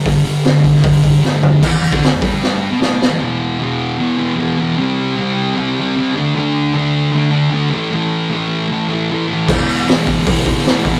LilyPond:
<<
  \new Staff \with { instrumentName = "Distorted electric guitar" } { \clef bass \time 4/4 \key e \minor \tempo 4 = 153 <g, d>8 <g, d>8 <g, d>8 <g, d>8 <g, d>8 <g, d>8 <g, d>8 <g, d>8 | <e, e>16 e,16 r16 <d d'>8 e,16 <g, g>4~ <g, g>16 <b, b>16 <b, b>8. <e, e>16 | <e, b, e>4 <e, b, e>4 <e, b, e>8 <b, e>8 <e, b, e>8 <b, e>8 | <c g c'>4 <c g c'>4 <c g c'>8 <g c'>8 <c g c'>8 <d a d'>8 |
<d a d'>4 <d a d'>4 <d a d'>8 <a d'>8 <d a d'>8 <a, e a>8 | <a, e a>4 <a, e a>4 <a, e a>8 <e a>8 <a, e a>8 <e a>8 | <e, b, e>4 <e, b, e>4 <e, b, e>8 <b, e>8 <e, b, e>8 <b, e>8 | }
  \new DrumStaff \with { instrumentName = "Drums" } \drummode { \time 4/4 <hho bd>8 hho8 <hho sn>8 <hho bd>16 sn16 <hho bd>8 <hho bd>8 sn8 tomfh8 | <cymc bd>8 hho16 bd16 <hho sn>8 <hho bd>8 sn4 sn8 sn8 | r4 r4 r4 r4 | r4 r4 r4 r4 |
r4 r4 r4 r4 | r4 r4 r4 r4 | <cymc bd>8 hho8 <hho sn>8 <hho bd>8 <hho bd>8 <hho bd>16 sn16 <hho sn>8 <hho bd>8 | }
>>